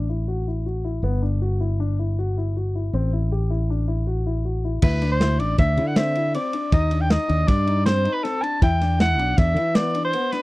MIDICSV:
0, 0, Header, 1, 5, 480
1, 0, Start_track
1, 0, Tempo, 379027
1, 1317, Time_signature, 5, 2, 24, 8
1, 13196, End_track
2, 0, Start_track
2, 0, Title_t, "Soprano saxophone"
2, 0, Program_c, 0, 64
2, 6113, Note_on_c, 0, 71, 71
2, 6454, Note_off_c, 0, 71, 0
2, 6479, Note_on_c, 0, 72, 94
2, 6827, Note_on_c, 0, 74, 85
2, 6846, Note_off_c, 0, 72, 0
2, 7072, Note_off_c, 0, 74, 0
2, 7079, Note_on_c, 0, 76, 89
2, 7441, Note_on_c, 0, 78, 81
2, 7460, Note_off_c, 0, 76, 0
2, 7550, Note_on_c, 0, 76, 91
2, 7569, Note_off_c, 0, 78, 0
2, 8037, Note_off_c, 0, 76, 0
2, 8044, Note_on_c, 0, 74, 77
2, 8490, Note_off_c, 0, 74, 0
2, 8530, Note_on_c, 0, 75, 91
2, 8877, Note_on_c, 0, 79, 91
2, 8896, Note_off_c, 0, 75, 0
2, 9004, Note_on_c, 0, 75, 92
2, 9023, Note_off_c, 0, 79, 0
2, 9474, Note_on_c, 0, 74, 105
2, 9493, Note_off_c, 0, 75, 0
2, 9944, Note_off_c, 0, 74, 0
2, 9951, Note_on_c, 0, 72, 101
2, 10297, Note_on_c, 0, 71, 87
2, 10316, Note_off_c, 0, 72, 0
2, 10432, Note_on_c, 0, 69, 94
2, 10451, Note_off_c, 0, 71, 0
2, 10668, Note_on_c, 0, 81, 114
2, 10687, Note_off_c, 0, 69, 0
2, 10913, Note_off_c, 0, 81, 0
2, 10926, Note_on_c, 0, 79, 94
2, 11368, Note_off_c, 0, 79, 0
2, 11405, Note_on_c, 0, 78, 104
2, 11879, Note_on_c, 0, 76, 104
2, 11898, Note_off_c, 0, 78, 0
2, 12357, Note_on_c, 0, 74, 102
2, 12376, Note_off_c, 0, 76, 0
2, 12715, Note_off_c, 0, 74, 0
2, 12720, Note_on_c, 0, 72, 97
2, 13073, Note_on_c, 0, 71, 85
2, 13092, Note_off_c, 0, 72, 0
2, 13196, Note_off_c, 0, 71, 0
2, 13196, End_track
3, 0, Start_track
3, 0, Title_t, "Grand piano"
3, 0, Program_c, 1, 0
3, 118, Note_on_c, 1, 64, 52
3, 324, Note_off_c, 1, 64, 0
3, 355, Note_on_c, 1, 66, 61
3, 563, Note_off_c, 1, 66, 0
3, 604, Note_on_c, 1, 64, 49
3, 808, Note_off_c, 1, 64, 0
3, 838, Note_on_c, 1, 66, 55
3, 1045, Note_off_c, 1, 66, 0
3, 1071, Note_on_c, 1, 64, 53
3, 1281, Note_off_c, 1, 64, 0
3, 1312, Note_on_c, 1, 59, 74
3, 1522, Note_off_c, 1, 59, 0
3, 1549, Note_on_c, 1, 62, 61
3, 1761, Note_off_c, 1, 62, 0
3, 1794, Note_on_c, 1, 66, 62
3, 2004, Note_off_c, 1, 66, 0
3, 2033, Note_on_c, 1, 64, 58
3, 2244, Note_off_c, 1, 64, 0
3, 2279, Note_on_c, 1, 62, 64
3, 2487, Note_off_c, 1, 62, 0
3, 2524, Note_on_c, 1, 64, 56
3, 2731, Note_off_c, 1, 64, 0
3, 2770, Note_on_c, 1, 66, 66
3, 2974, Note_off_c, 1, 66, 0
3, 3011, Note_on_c, 1, 64, 58
3, 3215, Note_off_c, 1, 64, 0
3, 3250, Note_on_c, 1, 66, 57
3, 3455, Note_off_c, 1, 66, 0
3, 3487, Note_on_c, 1, 64, 51
3, 3693, Note_off_c, 1, 64, 0
3, 3726, Note_on_c, 1, 60, 77
3, 3933, Note_off_c, 1, 60, 0
3, 3965, Note_on_c, 1, 64, 61
3, 4173, Note_off_c, 1, 64, 0
3, 4205, Note_on_c, 1, 67, 66
3, 4413, Note_off_c, 1, 67, 0
3, 4437, Note_on_c, 1, 64, 63
3, 4648, Note_off_c, 1, 64, 0
3, 4688, Note_on_c, 1, 62, 62
3, 4895, Note_off_c, 1, 62, 0
3, 4911, Note_on_c, 1, 64, 57
3, 5125, Note_off_c, 1, 64, 0
3, 5155, Note_on_c, 1, 66, 63
3, 5368, Note_off_c, 1, 66, 0
3, 5402, Note_on_c, 1, 64, 58
3, 5612, Note_off_c, 1, 64, 0
3, 5638, Note_on_c, 1, 66, 55
3, 5850, Note_off_c, 1, 66, 0
3, 5885, Note_on_c, 1, 64, 55
3, 6093, Note_off_c, 1, 64, 0
3, 6112, Note_on_c, 1, 64, 95
3, 6326, Note_off_c, 1, 64, 0
3, 6359, Note_on_c, 1, 62, 78
3, 6570, Note_off_c, 1, 62, 0
3, 6596, Note_on_c, 1, 64, 78
3, 6808, Note_off_c, 1, 64, 0
3, 6844, Note_on_c, 1, 62, 73
3, 7053, Note_off_c, 1, 62, 0
3, 7094, Note_on_c, 1, 62, 74
3, 7298, Note_off_c, 1, 62, 0
3, 7324, Note_on_c, 1, 64, 77
3, 7532, Note_off_c, 1, 64, 0
3, 7574, Note_on_c, 1, 60, 85
3, 7778, Note_off_c, 1, 60, 0
3, 7810, Note_on_c, 1, 64, 74
3, 8015, Note_off_c, 1, 64, 0
3, 8043, Note_on_c, 1, 60, 81
3, 8251, Note_off_c, 1, 60, 0
3, 8279, Note_on_c, 1, 62, 70
3, 8489, Note_off_c, 1, 62, 0
3, 8516, Note_on_c, 1, 63, 98
3, 8727, Note_off_c, 1, 63, 0
3, 8757, Note_on_c, 1, 62, 74
3, 8967, Note_off_c, 1, 62, 0
3, 8992, Note_on_c, 1, 63, 79
3, 9204, Note_off_c, 1, 63, 0
3, 9223, Note_on_c, 1, 62, 81
3, 9439, Note_off_c, 1, 62, 0
3, 9462, Note_on_c, 1, 62, 87
3, 9678, Note_off_c, 1, 62, 0
3, 9712, Note_on_c, 1, 63, 71
3, 9923, Note_off_c, 1, 63, 0
3, 9950, Note_on_c, 1, 60, 83
3, 10162, Note_off_c, 1, 60, 0
3, 10187, Note_on_c, 1, 63, 72
3, 10400, Note_off_c, 1, 63, 0
3, 10431, Note_on_c, 1, 60, 70
3, 10642, Note_off_c, 1, 60, 0
3, 10673, Note_on_c, 1, 62, 66
3, 10883, Note_off_c, 1, 62, 0
3, 10925, Note_on_c, 1, 64, 107
3, 11129, Note_off_c, 1, 64, 0
3, 11163, Note_on_c, 1, 62, 79
3, 11368, Note_off_c, 1, 62, 0
3, 11400, Note_on_c, 1, 64, 83
3, 11606, Note_off_c, 1, 64, 0
3, 11642, Note_on_c, 1, 62, 74
3, 11847, Note_off_c, 1, 62, 0
3, 11886, Note_on_c, 1, 62, 78
3, 12089, Note_off_c, 1, 62, 0
3, 12130, Note_on_c, 1, 64, 76
3, 12330, Note_off_c, 1, 64, 0
3, 12367, Note_on_c, 1, 59, 84
3, 12569, Note_off_c, 1, 59, 0
3, 12606, Note_on_c, 1, 62, 73
3, 12808, Note_off_c, 1, 62, 0
3, 12844, Note_on_c, 1, 59, 83
3, 13046, Note_off_c, 1, 59, 0
3, 13080, Note_on_c, 1, 62, 62
3, 13196, Note_off_c, 1, 62, 0
3, 13196, End_track
4, 0, Start_track
4, 0, Title_t, "Fingered electric bass"
4, 0, Program_c, 2, 33
4, 0, Note_on_c, 2, 33, 57
4, 1263, Note_off_c, 2, 33, 0
4, 1299, Note_on_c, 2, 31, 64
4, 3666, Note_off_c, 2, 31, 0
4, 3715, Note_on_c, 2, 33, 69
4, 6074, Note_off_c, 2, 33, 0
4, 6110, Note_on_c, 2, 38, 110
4, 6835, Note_off_c, 2, 38, 0
4, 6835, Note_on_c, 2, 33, 85
4, 7025, Note_off_c, 2, 33, 0
4, 7068, Note_on_c, 2, 38, 82
4, 7309, Note_on_c, 2, 50, 82
4, 7328, Note_off_c, 2, 38, 0
4, 8057, Note_off_c, 2, 50, 0
4, 8513, Note_on_c, 2, 39, 98
4, 9073, Note_off_c, 2, 39, 0
4, 9239, Note_on_c, 2, 39, 84
4, 9426, Note_off_c, 2, 39, 0
4, 9468, Note_on_c, 2, 43, 95
4, 10215, Note_off_c, 2, 43, 0
4, 10912, Note_on_c, 2, 40, 100
4, 11632, Note_off_c, 2, 40, 0
4, 11632, Note_on_c, 2, 35, 90
4, 11819, Note_off_c, 2, 35, 0
4, 11876, Note_on_c, 2, 40, 88
4, 12089, Note_on_c, 2, 52, 79
4, 12108, Note_off_c, 2, 40, 0
4, 12839, Note_off_c, 2, 52, 0
4, 13196, End_track
5, 0, Start_track
5, 0, Title_t, "Drums"
5, 6106, Note_on_c, 9, 49, 109
5, 6115, Note_on_c, 9, 36, 103
5, 6232, Note_off_c, 9, 49, 0
5, 6241, Note_off_c, 9, 36, 0
5, 6354, Note_on_c, 9, 38, 37
5, 6354, Note_on_c, 9, 51, 67
5, 6481, Note_off_c, 9, 38, 0
5, 6481, Note_off_c, 9, 51, 0
5, 6595, Note_on_c, 9, 38, 104
5, 6595, Note_on_c, 9, 51, 69
5, 6722, Note_off_c, 9, 38, 0
5, 6722, Note_off_c, 9, 51, 0
5, 6833, Note_on_c, 9, 51, 59
5, 6960, Note_off_c, 9, 51, 0
5, 7069, Note_on_c, 9, 51, 83
5, 7074, Note_on_c, 9, 36, 108
5, 7196, Note_off_c, 9, 51, 0
5, 7201, Note_off_c, 9, 36, 0
5, 7312, Note_on_c, 9, 51, 64
5, 7438, Note_off_c, 9, 51, 0
5, 7549, Note_on_c, 9, 38, 111
5, 7549, Note_on_c, 9, 51, 86
5, 7676, Note_off_c, 9, 38, 0
5, 7676, Note_off_c, 9, 51, 0
5, 7793, Note_on_c, 9, 51, 62
5, 7920, Note_off_c, 9, 51, 0
5, 8035, Note_on_c, 9, 51, 82
5, 8161, Note_off_c, 9, 51, 0
5, 8270, Note_on_c, 9, 51, 62
5, 8397, Note_off_c, 9, 51, 0
5, 8514, Note_on_c, 9, 51, 81
5, 8515, Note_on_c, 9, 36, 109
5, 8641, Note_off_c, 9, 51, 0
5, 8642, Note_off_c, 9, 36, 0
5, 8751, Note_on_c, 9, 51, 73
5, 8878, Note_off_c, 9, 51, 0
5, 8995, Note_on_c, 9, 38, 104
5, 8995, Note_on_c, 9, 51, 86
5, 9122, Note_off_c, 9, 38, 0
5, 9122, Note_off_c, 9, 51, 0
5, 9236, Note_on_c, 9, 51, 58
5, 9363, Note_off_c, 9, 51, 0
5, 9474, Note_on_c, 9, 51, 86
5, 9478, Note_on_c, 9, 36, 108
5, 9601, Note_off_c, 9, 51, 0
5, 9605, Note_off_c, 9, 36, 0
5, 9718, Note_on_c, 9, 51, 61
5, 9845, Note_off_c, 9, 51, 0
5, 9956, Note_on_c, 9, 38, 95
5, 9956, Note_on_c, 9, 51, 77
5, 10083, Note_off_c, 9, 38, 0
5, 10083, Note_off_c, 9, 51, 0
5, 10196, Note_on_c, 9, 51, 57
5, 10323, Note_off_c, 9, 51, 0
5, 10445, Note_on_c, 9, 38, 31
5, 10445, Note_on_c, 9, 51, 72
5, 10572, Note_off_c, 9, 38, 0
5, 10572, Note_off_c, 9, 51, 0
5, 10681, Note_on_c, 9, 51, 60
5, 10808, Note_off_c, 9, 51, 0
5, 10916, Note_on_c, 9, 51, 85
5, 10918, Note_on_c, 9, 36, 108
5, 11043, Note_off_c, 9, 51, 0
5, 11045, Note_off_c, 9, 36, 0
5, 11162, Note_on_c, 9, 38, 39
5, 11162, Note_on_c, 9, 51, 66
5, 11289, Note_off_c, 9, 38, 0
5, 11289, Note_off_c, 9, 51, 0
5, 11398, Note_on_c, 9, 38, 93
5, 11398, Note_on_c, 9, 51, 72
5, 11525, Note_off_c, 9, 38, 0
5, 11525, Note_off_c, 9, 51, 0
5, 11641, Note_on_c, 9, 51, 62
5, 11768, Note_off_c, 9, 51, 0
5, 11878, Note_on_c, 9, 51, 87
5, 11879, Note_on_c, 9, 36, 109
5, 12005, Note_off_c, 9, 36, 0
5, 12005, Note_off_c, 9, 51, 0
5, 12113, Note_on_c, 9, 51, 61
5, 12240, Note_off_c, 9, 51, 0
5, 12348, Note_on_c, 9, 38, 108
5, 12348, Note_on_c, 9, 51, 82
5, 12475, Note_off_c, 9, 38, 0
5, 12475, Note_off_c, 9, 51, 0
5, 12595, Note_on_c, 9, 51, 70
5, 12722, Note_off_c, 9, 51, 0
5, 12831, Note_on_c, 9, 51, 82
5, 12958, Note_off_c, 9, 51, 0
5, 13074, Note_on_c, 9, 38, 33
5, 13074, Note_on_c, 9, 51, 60
5, 13196, Note_off_c, 9, 38, 0
5, 13196, Note_off_c, 9, 51, 0
5, 13196, End_track
0, 0, End_of_file